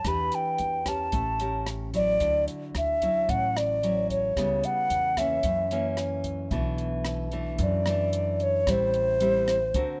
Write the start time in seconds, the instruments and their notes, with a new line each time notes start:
0.05 upright bass E2, nylon-string guitar E3 D4 G4 B4, ocarina B5, kick, cross-stick, closed hi-hat
0.32 ocarina G5, closed hi-hat
0.58 upright bass E2, closed hi-hat
0.85 nylon-string guitar C#4 G4 A#4, ocarina A5, kick, cross-stick, closed hi-hat
1.12 upright bass A1, nylon-string guitar A3, kick, closed hi-hat
1.40 nylon-string guitar C#4 G4 A#4, closed hi-hat
1.66 cross-stick, closed hi-hat
1.94 nylon-string guitar F#3 E4, ocarina D5, kick, closed hi-hat
2.20 upright bass D2, nylon-string guitar D3, kick, closed hi-hat
2.48 closed hi-hat
2.74 upright bass D2, ocarina E5, cross-stick, closed hi-hat
3.02 nylon-string guitar F#3 C#4 E4, kick, closed hi-hat
3.28 upright bass A1, nylon-string guitar A2, ocarina F#5, kick, closed hi-hat
3.57 ocarina D5, cross-stick, closed hi-hat
3.83 nylon-string guitar F#3 C#4 E4, closed hi-hat
4.10 ocarina C#5, kick, closed hi-hat
4.37 upright bass C#2, nylon-string guitar C#3 G3 B3 E4, kick, cross-stick, closed hi-hat
4.64 ocarina F#5, closed hi-hat
4.90 upright bass E2, closed hi-hat
5.17 nylon-string guitar E3 A#3 C#4, ocarina E5, kick, cross-stick, closed hi-hat
5.43 upright bass F#2, nylon-string guitar F#2, kick, closed hi-hat
5.71 nylon-string guitar E3 A#3 C#4, closed hi-hat
5.97 cross-stick, closed hi-hat
6.24 kick, closed hi-hat
6.51 upright bass B1, nylon-string guitar B2 E3 A3 D4, vibraphone E5, kick, closed hi-hat
6.78 closed hi-hat
7.05 cross-stick, closed hi-hat
7.31 nylon-string guitar E3 A3 D4, closed hi-hat
7.58 upright bass F#2, nylon-string guitar F#2, kick, closed hi-hat
7.63 ocarina D5
7.86 nylon-string guitar E3 A3 D4, cross-stick, closed hi-hat
8.13 closed hi-hat
8.40 ocarina C#5, closed hi-hat
8.67 upright bass A1, nylon-string guitar A2 G3 C4 E4, ocarina C5, kick, cross-stick, closed hi-hat
8.94 closed hi-hat
9.20 nylon-string guitar G3 C4 E4, closed hi-hat
9.48 cross-stick, closed hi-hat
9.74 upright bass D2, nylon-string guitar D3 C4 F#4 A#4, kick, closed hi-hat